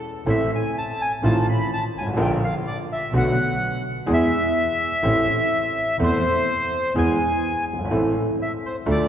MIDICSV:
0, 0, Header, 1, 4, 480
1, 0, Start_track
1, 0, Key_signature, 0, "minor"
1, 0, Tempo, 478088
1, 268, Time_signature, 4, 2, 24, 8
1, 9117, End_track
2, 0, Start_track
2, 0, Title_t, "Bandoneon"
2, 0, Program_c, 0, 23
2, 294, Note_on_c, 0, 76, 93
2, 507, Note_off_c, 0, 76, 0
2, 555, Note_on_c, 0, 80, 85
2, 759, Note_off_c, 0, 80, 0
2, 784, Note_on_c, 0, 81, 96
2, 1016, Note_off_c, 0, 81, 0
2, 1021, Note_on_c, 0, 80, 104
2, 1124, Note_off_c, 0, 80, 0
2, 1256, Note_on_c, 0, 81, 99
2, 1470, Note_off_c, 0, 81, 0
2, 1499, Note_on_c, 0, 83, 90
2, 1710, Note_off_c, 0, 83, 0
2, 1741, Note_on_c, 0, 81, 98
2, 1842, Note_off_c, 0, 81, 0
2, 1990, Note_on_c, 0, 80, 87
2, 2089, Note_off_c, 0, 80, 0
2, 2223, Note_on_c, 0, 79, 93
2, 2324, Note_off_c, 0, 79, 0
2, 2454, Note_on_c, 0, 77, 91
2, 2556, Note_off_c, 0, 77, 0
2, 2682, Note_on_c, 0, 74, 84
2, 2786, Note_off_c, 0, 74, 0
2, 2936, Note_on_c, 0, 76, 89
2, 3145, Note_off_c, 0, 76, 0
2, 3180, Note_on_c, 0, 78, 90
2, 3837, Note_off_c, 0, 78, 0
2, 4150, Note_on_c, 0, 76, 106
2, 5994, Note_off_c, 0, 76, 0
2, 6060, Note_on_c, 0, 72, 105
2, 6958, Note_off_c, 0, 72, 0
2, 7011, Note_on_c, 0, 80, 106
2, 7677, Note_off_c, 0, 80, 0
2, 8455, Note_on_c, 0, 76, 82
2, 8556, Note_off_c, 0, 76, 0
2, 8694, Note_on_c, 0, 72, 75
2, 8795, Note_off_c, 0, 72, 0
2, 8946, Note_on_c, 0, 74, 91
2, 9117, Note_off_c, 0, 74, 0
2, 9117, End_track
3, 0, Start_track
3, 0, Title_t, "Grand piano"
3, 0, Program_c, 1, 0
3, 258, Note_on_c, 1, 52, 68
3, 265, Note_on_c, 1, 33, 85
3, 265, Note_on_c, 1, 45, 86
3, 265, Note_on_c, 1, 69, 80
3, 269, Note_on_c, 1, 57, 67
3, 270, Note_on_c, 1, 60, 68
3, 467, Note_off_c, 1, 52, 0
3, 470, Note_off_c, 1, 33, 0
3, 470, Note_off_c, 1, 45, 0
3, 470, Note_off_c, 1, 69, 0
3, 472, Note_off_c, 1, 57, 0
3, 473, Note_off_c, 1, 60, 0
3, 1233, Note_on_c, 1, 51, 77
3, 1241, Note_on_c, 1, 33, 92
3, 1241, Note_on_c, 1, 45, 83
3, 1244, Note_on_c, 1, 57, 68
3, 1244, Note_on_c, 1, 60, 69
3, 1249, Note_on_c, 1, 65, 83
3, 1436, Note_off_c, 1, 51, 0
3, 1440, Note_off_c, 1, 33, 0
3, 1440, Note_off_c, 1, 45, 0
3, 1441, Note_off_c, 1, 57, 0
3, 1441, Note_off_c, 1, 60, 0
3, 1444, Note_off_c, 1, 65, 0
3, 2018, Note_on_c, 1, 31, 46
3, 2070, Note_on_c, 1, 32, 69
3, 2075, Note_off_c, 1, 31, 0
3, 2131, Note_off_c, 1, 32, 0
3, 2142, Note_on_c, 1, 33, 75
3, 2172, Note_on_c, 1, 50, 76
3, 2174, Note_on_c, 1, 46, 83
3, 2178, Note_on_c, 1, 53, 67
3, 2181, Note_on_c, 1, 34, 95
3, 2181, Note_on_c, 1, 65, 79
3, 2183, Note_on_c, 1, 58, 66
3, 2197, Note_off_c, 1, 33, 0
3, 2383, Note_off_c, 1, 50, 0
3, 2384, Note_off_c, 1, 46, 0
3, 2386, Note_off_c, 1, 53, 0
3, 2387, Note_off_c, 1, 34, 0
3, 2387, Note_off_c, 1, 65, 0
3, 2388, Note_off_c, 1, 58, 0
3, 3144, Note_on_c, 1, 57, 73
3, 3145, Note_on_c, 1, 50, 73
3, 3146, Note_on_c, 1, 35, 80
3, 3149, Note_on_c, 1, 47, 86
3, 3154, Note_on_c, 1, 59, 63
3, 3154, Note_on_c, 1, 66, 84
3, 3345, Note_off_c, 1, 57, 0
3, 3346, Note_off_c, 1, 35, 0
3, 3346, Note_off_c, 1, 50, 0
3, 3347, Note_off_c, 1, 47, 0
3, 3350, Note_off_c, 1, 59, 0
3, 3350, Note_off_c, 1, 66, 0
3, 4079, Note_on_c, 1, 56, 68
3, 4083, Note_on_c, 1, 40, 89
3, 4083, Note_on_c, 1, 52, 87
3, 4086, Note_on_c, 1, 68, 91
3, 4088, Note_on_c, 1, 59, 66
3, 4290, Note_off_c, 1, 56, 0
3, 4292, Note_off_c, 1, 40, 0
3, 4293, Note_off_c, 1, 52, 0
3, 4294, Note_off_c, 1, 68, 0
3, 4295, Note_off_c, 1, 59, 0
3, 5048, Note_on_c, 1, 45, 80
3, 5048, Note_on_c, 1, 60, 65
3, 5049, Note_on_c, 1, 52, 68
3, 5049, Note_on_c, 1, 57, 70
3, 5051, Note_on_c, 1, 69, 77
3, 5052, Note_on_c, 1, 33, 87
3, 5252, Note_off_c, 1, 45, 0
3, 5252, Note_off_c, 1, 52, 0
3, 5252, Note_off_c, 1, 57, 0
3, 5252, Note_off_c, 1, 60, 0
3, 5253, Note_off_c, 1, 69, 0
3, 5254, Note_off_c, 1, 33, 0
3, 6018, Note_on_c, 1, 60, 72
3, 6019, Note_on_c, 1, 52, 87
3, 6019, Note_on_c, 1, 57, 68
3, 6020, Note_on_c, 1, 40, 89
3, 6021, Note_on_c, 1, 69, 82
3, 6216, Note_off_c, 1, 52, 0
3, 6216, Note_off_c, 1, 57, 0
3, 6216, Note_off_c, 1, 60, 0
3, 6217, Note_off_c, 1, 40, 0
3, 6217, Note_off_c, 1, 69, 0
3, 6981, Note_on_c, 1, 52, 86
3, 6982, Note_on_c, 1, 56, 71
3, 6984, Note_on_c, 1, 40, 87
3, 6985, Note_on_c, 1, 68, 82
3, 6988, Note_on_c, 1, 59, 66
3, 7179, Note_off_c, 1, 52, 0
3, 7180, Note_off_c, 1, 56, 0
3, 7181, Note_off_c, 1, 40, 0
3, 7181, Note_off_c, 1, 68, 0
3, 7183, Note_off_c, 1, 59, 0
3, 7764, Note_on_c, 1, 30, 52
3, 7821, Note_off_c, 1, 30, 0
3, 7821, Note_on_c, 1, 31, 58
3, 7878, Note_on_c, 1, 32, 78
3, 7880, Note_off_c, 1, 31, 0
3, 7938, Note_off_c, 1, 32, 0
3, 7938, Note_on_c, 1, 52, 71
3, 7939, Note_on_c, 1, 33, 79
3, 7940, Note_on_c, 1, 45, 84
3, 7940, Note_on_c, 1, 60, 66
3, 7942, Note_on_c, 1, 57, 68
3, 7944, Note_on_c, 1, 69, 78
3, 8140, Note_off_c, 1, 52, 0
3, 8141, Note_off_c, 1, 33, 0
3, 8141, Note_off_c, 1, 60, 0
3, 8142, Note_off_c, 1, 45, 0
3, 8142, Note_off_c, 1, 57, 0
3, 8143, Note_off_c, 1, 69, 0
3, 8895, Note_on_c, 1, 38, 88
3, 8898, Note_on_c, 1, 62, 63
3, 8899, Note_on_c, 1, 57, 62
3, 8901, Note_on_c, 1, 53, 66
3, 8901, Note_on_c, 1, 69, 85
3, 8904, Note_on_c, 1, 50, 79
3, 9100, Note_off_c, 1, 38, 0
3, 9101, Note_off_c, 1, 62, 0
3, 9102, Note_off_c, 1, 57, 0
3, 9103, Note_off_c, 1, 53, 0
3, 9103, Note_off_c, 1, 69, 0
3, 9104, Note_off_c, 1, 50, 0
3, 9117, End_track
4, 0, Start_track
4, 0, Title_t, "Double bass"
4, 0, Program_c, 2, 43
4, 261, Note_on_c, 2, 33, 92
4, 468, Note_off_c, 2, 33, 0
4, 1238, Note_on_c, 2, 33, 100
4, 1438, Note_off_c, 2, 33, 0
4, 1958, Note_on_c, 2, 32, 54
4, 2185, Note_off_c, 2, 32, 0
4, 2191, Note_on_c, 2, 34, 85
4, 2392, Note_off_c, 2, 34, 0
4, 3136, Note_on_c, 2, 35, 102
4, 3341, Note_off_c, 2, 35, 0
4, 4098, Note_on_c, 2, 40, 101
4, 4300, Note_off_c, 2, 40, 0
4, 5058, Note_on_c, 2, 33, 102
4, 5257, Note_off_c, 2, 33, 0
4, 6007, Note_on_c, 2, 40, 92
4, 6210, Note_off_c, 2, 40, 0
4, 6979, Note_on_c, 2, 40, 97
4, 7178, Note_off_c, 2, 40, 0
4, 7699, Note_on_c, 2, 31, 53
4, 7937, Note_off_c, 2, 31, 0
4, 7943, Note_on_c, 2, 33, 85
4, 8143, Note_off_c, 2, 33, 0
4, 8903, Note_on_c, 2, 38, 93
4, 9104, Note_off_c, 2, 38, 0
4, 9117, End_track
0, 0, End_of_file